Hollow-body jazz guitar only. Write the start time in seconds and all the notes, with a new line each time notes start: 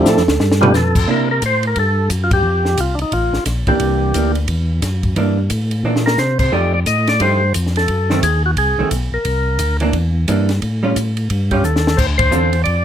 0.08 A4
0.62 B4
1.08 A#3 D4 E4
3.68 E3 A#3 D4
4.15 E3 A#3 D4
5.17 E3 A#3 D4
5.85 E3 A#3 D4
6.52 F3 A3 D#4 G4
7.20 F3 A3 D#4 G4
8.11 D#3 A3 C4
8.79 D#3 A3 C4
9.81 E3 A#3 D4
10.28 E3 A#3 D4
10.83 G3 C#4 F4
11.52 G3 C#4 F4
12.31 D3 C4 F4 A4